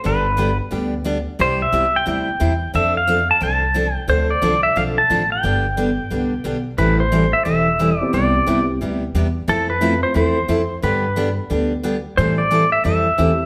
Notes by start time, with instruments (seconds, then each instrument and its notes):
0.04 upright bass G1, steel-string acoustic guitar D3 G3 B3 D4 G4, pedal steel guitar B4
0.37 steel-string acoustic guitar D3 G3 B3 D4 G4
0.71 upright bass D2, steel-string acoustic guitar D3 G3 B3 D4 G4
1.04 steel-string acoustic guitar D3 G3 B3 D4 G4
1.39 upright bass C2, steel-string acoustic guitar C3 G3 C4 E4 G4, pedal steel guitar C5
1.62 pedal steel guitar E5
1.72 upright bass C2, steel-string acoustic guitar C3 G3 C4 E4 G4
1.96 pedal steel guitar G5
2.06 upright bass D2, steel-string acoustic guitar C3 G3 C4 E4 G4, pedal steel guitar G5
2.40 upright bass E2, steel-string acoustic guitar C3 G3 C4 E4 G4
2.74 upright bass F2, steel-string acoustic guitar F3 C4 D4 A4, pedal steel guitar E5
2.97 pedal steel guitar F5
3.07 steel-string acoustic guitar F3 C4 D4 A4
3.31 pedal steel guitar A5
3.41 upright bass C2, steel-string acoustic guitar F3 C4 D4 A4, pedal steel guitar A5
3.74 steel-string acoustic guitar F3 C4 D4 A4
3.95 pedal steel guitar G5
4.08 upright bass D2, steel-string acoustic guitar D3 F3 C4 D4 A4, pedal steel guitar C5
4.30 pedal steel guitar D5
4.42 upright bass C2, steel-string acoustic guitar D3 F3 C4 D4 A4
4.63 pedal steel guitar E5
4.76 upright bass B1, steel-string acoustic guitar D3 F3 C4 D4 A4, pedal steel guitar F5
4.98 pedal steel guitar A5
5.10 upright bass A1, steel-string acoustic guitar D3 F3 C4 D4 A4
5.32 pedal steel guitar G5
5.43 upright bass G1, steel-string acoustic guitar D3 G3 B3 D4 G4
5.77 steel-string acoustic guitar D3 G3 B3 D4 G4
6.10 upright bass C2, steel-string acoustic guitar D3 G3 B3 D4 G4
6.44 upright bass B1, steel-string acoustic guitar D3 G3 B3 D4 G4
6.78 upright bass A1, steel-string acoustic guitar E3 G3 C4 E4 A4, pedal steel guitar B4
7.00 pedal steel guitar C5
7.12 steel-string acoustic guitar E3 G3 C4 E4 A4
7.33 pedal steel guitar E5
7.45 upright bass E1, steel-string acoustic guitar E3 G3 C4 E4 A4
7.79 steel-string acoustic guitar E3 G3 C4 E4 A4
8.01 upright piano B3 C4 E4 G4
8.13 upright bass C2, steel-string acoustic guitar C3 G3 B3 E4 G4, pedal steel guitar D5
8.47 upright bass C2, steel-string acoustic guitar C3 G3 B3 E4 G4, upright piano B3 C4 E4 G4
8.81 upright bass D2, steel-string acoustic guitar C3 G3 B3 E4 G4
9.15 upright bass E2, steel-string acoustic guitar C3 G3 B3 E4 G4
9.48 upright bass F2, steel-string acoustic guitar F3 A3 C4 E4 A4, pedal steel guitar A4
9.70 pedal steel guitar B4
9.81 steel-string acoustic guitar F3 A3 C4 E4 A4, upright piano A3 C4 E4 F4
10.03 pedal steel guitar C5
10.14 upright bass E2, steel-string acoustic guitar F3 A3 C4 E4 A4, pedal steel guitar C5
10.48 upright bass F2, steel-string acoustic guitar F3 A3 C4 E4 A4
10.82 upright bass G2, steel-string acoustic guitar D3 G3 B3 D4 G4, pedal steel guitar B4
11.16 steel-string acoustic guitar D3 G3 B3 D4 G4
11.50 upright bass D2, steel-string acoustic guitar D3 G3 B3 D4 G4
11.83 steel-string acoustic guitar D3 G3 B3 D4 G4
12.17 upright bass A2, steel-string acoustic guitar E3 G3 C4 E4 A4, pedal steel guitar C5
12.38 pedal steel guitar D5
12.51 steel-string acoustic guitar E3 G3 C4 E4 A4
12.72 pedal steel guitar E5
12.84 upright bass F2, steel-string acoustic guitar E3 G3 C4 E4 A4
13.18 upright bass E2, steel-string acoustic guitar E3 G3 C4 E4 A4, upright piano A3 C4 E4 G4